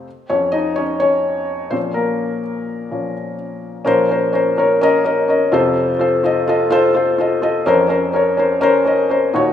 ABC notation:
X:1
M:4/4
L:1/8
Q:1/4=126
K:Bbm
V:1 name="Felt piano"
z [Dd] [Ee] [Dd] [Dd]3 [Cc] | [B,B]6 z2 | [DBc] [DBc] [DBc] [DBd] [DBe] [DBe] [DBe] [F=Ac]- | [F=Ac] [FAc] [FAe] [FAe] [FAc] [FAc] [FAe] [FAe] |
[DBc] [DBc] [DBd] [DBc] [DBc] [DBe] [DBc] [EGd] |]
V:2 name="Felt piano" clef=bass
z [F,,F,]3 z3 [B,,F,D]- | [B,,F,D]2 z2 [B,,F,D] z3 | [B,,F,]6- [B,,F,] [F,,C,]- | [F,,C,]6- [F,,C,] z |
[F,,F,]6- [F,,F,] [E,,B,,] |]